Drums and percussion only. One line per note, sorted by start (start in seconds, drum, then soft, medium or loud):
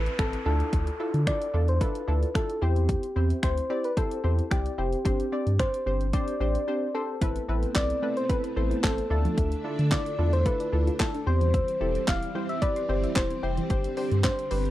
0.06 closed hi-hat medium
0.19 finger snap loud
0.19 kick loud
0.19 closed hi-hat medium
0.33 closed hi-hat medium
0.60 closed hi-hat medium
0.73 kick loud
0.73 closed hi-hat medium
0.87 closed hi-hat soft
1.14 closed hi-hat medium
1.27 finger snap loud
1.27 kick loud
1.27 closed hi-hat medium
1.42 closed hi-hat medium
1.68 closed hi-hat medium
1.81 kick loud
1.81 closed hi-hat medium
1.95 closed hi-hat medium
2.23 closed hi-hat medium
2.35 finger snap loud
2.35 kick loud
2.35 closed hi-hat medium
2.50 closed hi-hat soft
2.76 closed hi-hat medium
2.89 kick loud
2.89 closed hi-hat medium
3.03 closed hi-hat medium
3.30 closed hi-hat medium
3.43 finger snap loud
3.43 kick loud
3.43 closed hi-hat medium
3.58 closed hi-hat medium
3.84 closed hi-hat soft
3.97 kick loud
3.97 closed hi-hat medium
4.11 closed hi-hat medium
4.39 closed hi-hat medium
4.51 finger snap loud
4.51 kick loud
4.51 closed hi-hat medium
4.66 closed hi-hat soft
4.93 closed hi-hat medium
5.05 kick loud
5.05 closed hi-hat medium
5.20 closed hi-hat medium
5.47 closed hi-hat medium
5.59 finger snap loud
5.59 kick loud
5.59 closed hi-hat medium
5.74 closed hi-hat medium
6.01 closed hi-hat medium
6.13 kick loud
6.13 closed hi-hat medium
6.28 closed hi-hat medium
6.55 closed hi-hat medium
7.22 kick loud
7.22 closed hi-hat medium
7.36 closed hi-hat medium
7.63 closed hi-hat medium
7.75 kick loud
7.75 snare loud
7.75 clap loud
7.75 closed hi-hat medium
7.90 closed hi-hat medium
8.17 closed hi-hat medium
8.29 kick loud
8.29 closed hi-hat medium
8.44 closed hi-hat medium
8.71 closed hi-hat medium
8.84 kick loud
8.84 snare loud
8.84 clap loud
8.84 closed hi-hat medium
8.98 closed hi-hat medium
9.25 closed hi-hat medium
9.38 kick loud
9.38 closed hi-hat medium
9.52 closed hi-hat medium
9.79 closed hi-hat medium
9.91 kick loud
9.91 snare loud
9.91 clap loud
9.91 closed hi-hat medium
10.06 closed hi-hat medium
10.33 closed hi-hat soft
10.46 kick loud
10.46 closed hi-hat medium
10.60 closed hi-hat medium
10.87 closed hi-hat medium
11.00 kick loud
11.00 snare loud
11.00 clap loud
11.00 closed hi-hat medium
11.14 closed hi-hat soft
11.41 closed hi-hat medium
11.54 kick loud
11.54 closed hi-hat medium
11.68 closed hi-hat medium
11.95 closed hi-hat medium
12.08 kick loud
12.08 snare medium
12.08 clap loud
12.08 closed hi-hat medium
12.23 closed hi-hat medium
12.49 closed hi-hat soft
12.62 kick loud
12.62 closed hi-hat medium
12.76 closed hi-hat medium
13.04 closed hi-hat medium
13.16 kick loud
13.16 snare medium
13.16 clap loud
13.16 closed hi-hat medium
13.31 closed hi-hat medium
13.57 closed hi-hat medium
13.70 kick loud
13.70 closed hi-hat medium
13.84 closed hi-hat medium
13.97 open hi-hat medium
14.12 closed hi-hat medium
14.24 kick loud
14.24 snare loud
14.24 clap loud
14.24 closed hi-hat medium
14.39 closed hi-hat medium
14.51 open hi-hat medium
14.65 closed hi-hat medium